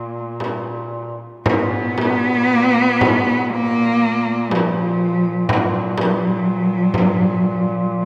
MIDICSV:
0, 0, Header, 1, 4, 480
1, 0, Start_track
1, 0, Tempo, 1067616
1, 654, Tempo, 1027397
1, 655, Time_signature, 4, 2, 24, 8
1, 1614, Tempo, 986842
1, 2574, Tempo, 961538
1, 3855, End_track
2, 0, Start_track
2, 0, Title_t, "Cello"
2, 0, Program_c, 0, 42
2, 0, Note_on_c, 0, 58, 92
2, 179, Note_off_c, 0, 58, 0
2, 656, Note_on_c, 0, 59, 110
2, 1612, Note_on_c, 0, 58, 102
2, 1619, Note_off_c, 0, 59, 0
2, 2104, Note_on_c, 0, 53, 86
2, 2112, Note_off_c, 0, 58, 0
2, 2580, Note_on_c, 0, 54, 81
2, 2587, Note_off_c, 0, 53, 0
2, 3853, Note_off_c, 0, 54, 0
2, 3855, End_track
3, 0, Start_track
3, 0, Title_t, "Duduk"
3, 0, Program_c, 1, 69
3, 0, Note_on_c, 1, 46, 39
3, 583, Note_off_c, 1, 46, 0
3, 660, Note_on_c, 1, 46, 46
3, 3855, Note_off_c, 1, 46, 0
3, 3855, End_track
4, 0, Start_track
4, 0, Title_t, "Frame drum"
4, 181, Note_on_c, 9, 64, 40
4, 226, Note_off_c, 9, 64, 0
4, 655, Note_on_c, 9, 64, 74
4, 702, Note_off_c, 9, 64, 0
4, 898, Note_on_c, 9, 64, 54
4, 944, Note_off_c, 9, 64, 0
4, 1381, Note_on_c, 9, 64, 65
4, 1428, Note_off_c, 9, 64, 0
4, 2102, Note_on_c, 9, 64, 51
4, 2151, Note_off_c, 9, 64, 0
4, 2577, Note_on_c, 9, 64, 67
4, 2627, Note_off_c, 9, 64, 0
4, 2820, Note_on_c, 9, 64, 62
4, 2870, Note_off_c, 9, 64, 0
4, 3301, Note_on_c, 9, 64, 61
4, 3351, Note_off_c, 9, 64, 0
4, 3855, End_track
0, 0, End_of_file